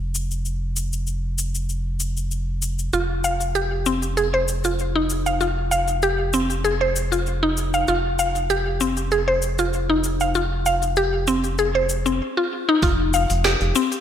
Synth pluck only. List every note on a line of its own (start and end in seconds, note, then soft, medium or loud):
2.93 3.03 F4 medium
3.24 3.40 F5 medium
3.55 3.84 G4 medium
3.86 4.02 C4 medium
4.17 4.26 G#4 medium
4.34 4.42 C5 medium
4.65 4.78 F4 medium
4.95 5.25 D#4 medium
5.26 5.34 F5 medium
5.41 5.50 F4 medium
5.71 5.87 F5 medium
6.03 6.32 G4 medium
6.34 6.49 C4 medium
6.64 6.74 G#4 medium
6.81 6.89 C5 medium
7.12 7.25 F4 medium
7.43 7.72 D#4 medium
7.74 7.82 F5 medium
7.88 7.97 F4 medium
8.19 8.35 F5 medium
8.50 8.79 G4 medium
8.81 8.96 C4 medium
9.12 9.21 G#4 medium
9.28 9.36 C5 medium
9.59 9.73 F4 medium
9.90 10.19 D#4 medium
10.21 10.29 F5 medium
10.35 10.45 F4 medium
10.66 10.82 F5 medium
10.97 11.26 G4 medium
11.28 11.43 C4 medium
11.59 11.68 G#4 medium
11.75 11.83 C5 medium
12.06 12.19 C4 medium
12.37 12.50 F4 medium
12.69 12.82 D#4 loud
12.83 12.92 F4 medium
13.14 13.29 F5 medium
13.45 13.74 G4 medium
13.76 13.91 C4 medium